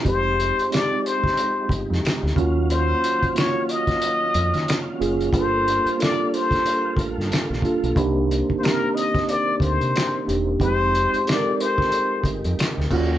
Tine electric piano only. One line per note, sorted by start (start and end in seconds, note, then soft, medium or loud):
0.05 0.65 G#3 medium
0.05 0.66 C4 medium
0.05 0.66 D#4 medium
0.05 0.67 G4 medium
0.71 1.92 G#3 medium
0.71 1.92 C4 medium
0.71 1.93 D#4 medium
0.71 1.93 G4 medium
2.35 3.26 A#3 medium
2.35 3.27 C#4 medium
2.35 3.27 F4 medium
2.35 3.28 F#4 loud
3.35 4.56 A#3 medium
3.35 4.56 C#4 medium
3.35 4.56 F4 medium
3.35 4.57 F#4 medium
4.99 5.29 A#3 medium
4.99 5.30 C#4 medium
4.99 5.30 F4 medium
4.99 5.31 G#4 medium
5.32 5.93 A#3 medium
5.32 5.93 D4 medium
5.32 5.93 F4 medium
5.32 5.41 G#4 medium
5.41 5.97 A4 medium
5.98 7.19 A#3 medium
5.98 7.20 D4 medium
5.98 7.20 F4 medium
5.98 7.20 A4 medium
7.62 7.93 A#3 medium
7.62 7.93 D4 medium
7.62 7.94 F4 medium
7.62 7.94 A4 medium
7.95 8.56 A#3 medium
7.95 8.57 D4 medium
7.95 8.57 D#4 medium
7.95 8.57 G4 medium
8.61 9.82 A#3 medium
8.61 9.83 C4 medium
8.61 9.83 D#4 medium
8.61 9.84 G4 medium
10.25 10.56 A#3 medium
10.25 10.57 D4 medium
10.25 10.57 D#4 medium
10.25 10.58 G4 medium
10.59 10.67 G3 medium
10.59 11.20 C4 medium
10.59 11.21 D#4 medium
10.59 11.21 G4 medium
10.65 11.23 G#3 medium
11.25 12.46 G#3 medium
11.25 12.47 C4 medium
11.25 12.47 D#4 medium
11.25 11.35 A4 medium
11.34 12.51 A#4 medium
12.90 13.18 A#3 medium
12.90 13.18 C#4 medium
12.90 13.18 F4 medium
12.90 13.18 F#4 loud